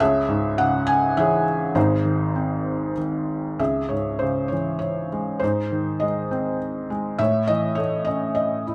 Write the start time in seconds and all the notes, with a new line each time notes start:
0.00 C#2 G#4 C#5 E5
0.28 G#2
0.58 C#3 F#5
0.87 G#5
1.17 E3 G#4 C#5 E5
1.75 G#1 G#2 D#4 G#4 C5
2.05 D#3
2.36 C4
2.97 D#3
3.59 C#2 G#4 E5
3.89 G#2 C#5
4.19 C#3 C5
4.48 E3 C#5
4.79 C#5
5.12 G#3
5.39 G#2 D#4 C5
5.72 D#3
6.00 G#3 D#5
6.31 C4
6.90 G#3
7.19 A2 C#5 E5
7.47 E3 D#5
7.75 A3 C#5
8.05 C#4 D#5
8.35 D#5
8.67 E4